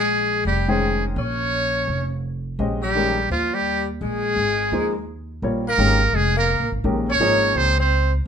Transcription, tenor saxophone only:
0, 0, Header, 1, 2, 480
1, 0, Start_track
1, 0, Tempo, 355240
1, 1574, Time_signature, 4, 2, 24, 8
1, 11176, End_track
2, 0, Start_track
2, 0, Title_t, "Tenor saxophone"
2, 0, Program_c, 0, 66
2, 0, Note_on_c, 0, 56, 63
2, 570, Note_off_c, 0, 56, 0
2, 627, Note_on_c, 0, 55, 59
2, 946, Note_on_c, 0, 56, 62
2, 966, Note_off_c, 0, 55, 0
2, 1416, Note_off_c, 0, 56, 0
2, 1598, Note_on_c, 0, 61, 67
2, 2972, Note_off_c, 0, 61, 0
2, 3807, Note_on_c, 0, 55, 73
2, 4410, Note_off_c, 0, 55, 0
2, 4467, Note_on_c, 0, 53, 67
2, 4778, Note_on_c, 0, 55, 74
2, 4798, Note_off_c, 0, 53, 0
2, 5252, Note_off_c, 0, 55, 0
2, 5426, Note_on_c, 0, 56, 66
2, 6806, Note_off_c, 0, 56, 0
2, 7665, Note_on_c, 0, 58, 77
2, 8297, Note_on_c, 0, 56, 71
2, 8317, Note_off_c, 0, 58, 0
2, 8594, Note_off_c, 0, 56, 0
2, 8602, Note_on_c, 0, 58, 68
2, 9050, Note_off_c, 0, 58, 0
2, 9576, Note_on_c, 0, 61, 77
2, 10208, Note_on_c, 0, 60, 69
2, 10228, Note_off_c, 0, 61, 0
2, 10516, Note_off_c, 0, 60, 0
2, 10524, Note_on_c, 0, 60, 66
2, 10970, Note_off_c, 0, 60, 0
2, 11176, End_track
0, 0, End_of_file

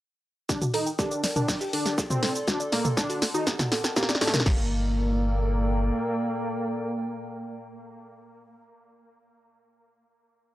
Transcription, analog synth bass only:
0, 0, Header, 1, 2, 480
1, 0, Start_track
1, 0, Key_signature, -2, "minor"
1, 0, Tempo, 495868
1, 478, Time_signature, 4, 2, 24, 8
1, 10209, End_track
2, 0, Start_track
2, 0, Title_t, "Analog synth bass"
2, 0, Program_c, 0, 38
2, 717, Note_on_c, 0, 31, 95
2, 883, Note_off_c, 0, 31, 0
2, 1197, Note_on_c, 0, 31, 93
2, 1363, Note_off_c, 0, 31, 0
2, 1676, Note_on_c, 0, 33, 96
2, 1842, Note_off_c, 0, 33, 0
2, 2157, Note_on_c, 0, 45, 87
2, 2323, Note_off_c, 0, 45, 0
2, 2638, Note_on_c, 0, 38, 100
2, 2803, Note_off_c, 0, 38, 0
2, 3118, Note_on_c, 0, 38, 103
2, 3283, Note_off_c, 0, 38, 0
2, 3597, Note_on_c, 0, 36, 96
2, 3763, Note_off_c, 0, 36, 0
2, 4317, Note_on_c, 0, 31, 102
2, 5719, Note_off_c, 0, 31, 0
2, 10209, End_track
0, 0, End_of_file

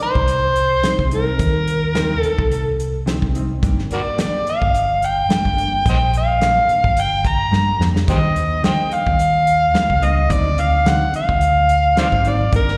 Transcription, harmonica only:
0, 0, Header, 1, 2, 480
1, 0, Start_track
1, 0, Key_signature, -2, "minor"
1, 0, Tempo, 556586
1, 1202, Time_signature, 4, 2, 24, 8
1, 11016, End_track
2, 0, Start_track
2, 0, Title_t, "Harmonica"
2, 0, Program_c, 0, 22
2, 23, Note_on_c, 0, 72, 104
2, 939, Note_off_c, 0, 72, 0
2, 991, Note_on_c, 0, 70, 77
2, 1888, Note_off_c, 0, 70, 0
2, 1888, Note_on_c, 0, 69, 77
2, 2385, Note_off_c, 0, 69, 0
2, 3392, Note_on_c, 0, 66, 52
2, 3392, Note_on_c, 0, 70, 52
2, 3392, Note_on_c, 0, 74, 74
2, 3446, Note_off_c, 0, 70, 0
2, 3457, Note_off_c, 0, 66, 0
2, 3603, Note_off_c, 0, 74, 0
2, 3631, Note_on_c, 0, 74, 76
2, 3843, Note_off_c, 0, 74, 0
2, 3875, Note_on_c, 0, 77, 91
2, 4362, Note_on_c, 0, 79, 101
2, 4375, Note_off_c, 0, 77, 0
2, 5065, Note_off_c, 0, 79, 0
2, 5085, Note_on_c, 0, 72, 65
2, 5085, Note_on_c, 0, 75, 65
2, 5085, Note_on_c, 0, 79, 93
2, 5145, Note_off_c, 0, 75, 0
2, 5154, Note_off_c, 0, 72, 0
2, 5291, Note_off_c, 0, 79, 0
2, 5327, Note_on_c, 0, 77, 98
2, 6039, Note_on_c, 0, 79, 96
2, 6052, Note_off_c, 0, 77, 0
2, 6274, Note_on_c, 0, 82, 86
2, 6286, Note_off_c, 0, 79, 0
2, 6741, Note_off_c, 0, 82, 0
2, 6984, Note_on_c, 0, 67, 65
2, 6984, Note_on_c, 0, 72, 65
2, 6984, Note_on_c, 0, 75, 93
2, 7049, Note_off_c, 0, 67, 0
2, 7055, Note_off_c, 0, 72, 0
2, 7423, Note_off_c, 0, 75, 0
2, 7462, Note_on_c, 0, 72, 65
2, 7462, Note_on_c, 0, 75, 65
2, 7462, Note_on_c, 0, 79, 92
2, 7514, Note_off_c, 0, 75, 0
2, 7525, Note_off_c, 0, 72, 0
2, 7704, Note_on_c, 0, 77, 106
2, 7717, Note_off_c, 0, 79, 0
2, 8658, Note_on_c, 0, 75, 87
2, 8671, Note_off_c, 0, 77, 0
2, 8902, Note_on_c, 0, 74, 99
2, 8915, Note_off_c, 0, 75, 0
2, 9142, Note_on_c, 0, 77, 99
2, 9155, Note_off_c, 0, 74, 0
2, 9381, Note_on_c, 0, 78, 92
2, 9394, Note_off_c, 0, 77, 0
2, 9613, Note_off_c, 0, 78, 0
2, 9624, Note_on_c, 0, 77, 98
2, 10299, Note_off_c, 0, 77, 0
2, 10341, Note_on_c, 0, 72, 69
2, 10341, Note_on_c, 0, 74, 69
2, 10341, Note_on_c, 0, 77, 98
2, 10394, Note_off_c, 0, 72, 0
2, 10407, Note_off_c, 0, 74, 0
2, 10591, Note_on_c, 0, 74, 78
2, 10604, Note_off_c, 0, 77, 0
2, 10817, Note_off_c, 0, 74, 0
2, 10827, Note_on_c, 0, 70, 84
2, 11016, Note_off_c, 0, 70, 0
2, 11016, End_track
0, 0, End_of_file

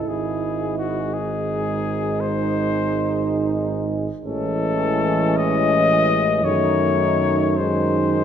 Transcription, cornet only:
0, 0, Header, 1, 2, 480
1, 0, Start_track
1, 0, Tempo, 711744
1, 50, Time_signature, 12, 3, 24, 8
1, 1490, Tempo, 681044
1, 2930, Tempo, 730816
1, 4370, Tempo, 764331
1, 5499, End_track
2, 0, Start_track
2, 0, Title_t, "Cornet"
2, 0, Program_c, 0, 56
2, 52, Note_on_c, 0, 68, 66
2, 521, Note_off_c, 0, 68, 0
2, 525, Note_on_c, 0, 66, 63
2, 766, Note_on_c, 0, 68, 73
2, 776, Note_off_c, 0, 66, 0
2, 1486, Note_on_c, 0, 72, 80
2, 1496, Note_off_c, 0, 68, 0
2, 2687, Note_off_c, 0, 72, 0
2, 2930, Note_on_c, 0, 69, 90
2, 3663, Note_on_c, 0, 75, 115
2, 3673, Note_off_c, 0, 69, 0
2, 4369, Note_on_c, 0, 73, 89
2, 4379, Note_off_c, 0, 75, 0
2, 5077, Note_on_c, 0, 72, 83
2, 5086, Note_off_c, 0, 73, 0
2, 5499, Note_off_c, 0, 72, 0
2, 5499, End_track
0, 0, End_of_file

